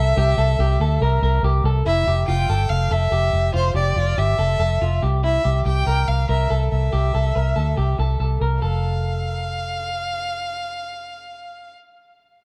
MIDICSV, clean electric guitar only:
0, 0, Header, 1, 2, 480
1, 0, Start_track
1, 0, Key_signature, -1, "major"
1, 0, Tempo, 423131
1, 201, Time_signature, 4, 2, 24, 8
1, 14112, End_track
2, 0, Start_track
2, 0, Title_t, "Clean electric guitar"
2, 0, Program_c, 0, 27
2, 0, Note_on_c, 0, 69, 83
2, 173, Note_off_c, 0, 69, 0
2, 201, Note_on_c, 0, 67, 115
2, 430, Note_off_c, 0, 67, 0
2, 435, Note_on_c, 0, 69, 68
2, 674, Note_off_c, 0, 69, 0
2, 681, Note_on_c, 0, 67, 83
2, 916, Note_off_c, 0, 67, 0
2, 920, Note_on_c, 0, 69, 72
2, 1153, Note_off_c, 0, 69, 0
2, 1158, Note_on_c, 0, 70, 84
2, 1385, Note_off_c, 0, 70, 0
2, 1398, Note_on_c, 0, 70, 82
2, 1632, Note_off_c, 0, 70, 0
2, 1638, Note_on_c, 0, 67, 83
2, 1872, Note_off_c, 0, 67, 0
2, 1877, Note_on_c, 0, 69, 78
2, 2109, Note_off_c, 0, 69, 0
2, 2113, Note_on_c, 0, 64, 83
2, 2348, Note_off_c, 0, 64, 0
2, 2357, Note_on_c, 0, 67, 63
2, 2587, Note_on_c, 0, 65, 79
2, 2589, Note_off_c, 0, 67, 0
2, 2824, Note_off_c, 0, 65, 0
2, 2828, Note_on_c, 0, 69, 81
2, 3274, Note_off_c, 0, 69, 0
2, 3305, Note_on_c, 0, 69, 66
2, 3535, Note_off_c, 0, 69, 0
2, 3540, Note_on_c, 0, 67, 66
2, 3990, Note_off_c, 0, 67, 0
2, 4012, Note_on_c, 0, 65, 86
2, 4251, Note_off_c, 0, 65, 0
2, 4256, Note_on_c, 0, 67, 61
2, 4498, Note_off_c, 0, 67, 0
2, 4498, Note_on_c, 0, 65, 79
2, 4736, Note_off_c, 0, 65, 0
2, 4740, Note_on_c, 0, 67, 76
2, 4973, Note_off_c, 0, 67, 0
2, 4978, Note_on_c, 0, 69, 71
2, 5202, Note_off_c, 0, 69, 0
2, 5215, Note_on_c, 0, 69, 69
2, 5456, Note_off_c, 0, 69, 0
2, 5462, Note_on_c, 0, 65, 72
2, 5700, Note_off_c, 0, 65, 0
2, 5700, Note_on_c, 0, 67, 76
2, 5937, Note_off_c, 0, 67, 0
2, 5942, Note_on_c, 0, 64, 73
2, 6172, Note_off_c, 0, 64, 0
2, 6176, Note_on_c, 0, 67, 70
2, 6409, Note_off_c, 0, 67, 0
2, 6422, Note_on_c, 0, 67, 73
2, 6655, Note_off_c, 0, 67, 0
2, 6659, Note_on_c, 0, 70, 76
2, 7111, Note_off_c, 0, 70, 0
2, 7137, Note_on_c, 0, 70, 71
2, 7372, Note_off_c, 0, 70, 0
2, 7377, Note_on_c, 0, 69, 75
2, 7830, Note_off_c, 0, 69, 0
2, 7858, Note_on_c, 0, 67, 88
2, 8100, Note_off_c, 0, 67, 0
2, 8106, Note_on_c, 0, 69, 61
2, 8340, Note_off_c, 0, 69, 0
2, 8340, Note_on_c, 0, 70, 66
2, 8570, Note_off_c, 0, 70, 0
2, 8575, Note_on_c, 0, 69, 64
2, 8814, Note_off_c, 0, 69, 0
2, 8819, Note_on_c, 0, 67, 67
2, 9062, Note_off_c, 0, 67, 0
2, 9069, Note_on_c, 0, 69, 70
2, 9291, Note_off_c, 0, 69, 0
2, 9304, Note_on_c, 0, 69, 64
2, 9542, Note_off_c, 0, 69, 0
2, 9546, Note_on_c, 0, 70, 63
2, 9776, Note_off_c, 0, 70, 0
2, 9780, Note_on_c, 0, 69, 72
2, 11185, Note_off_c, 0, 69, 0
2, 14112, End_track
0, 0, End_of_file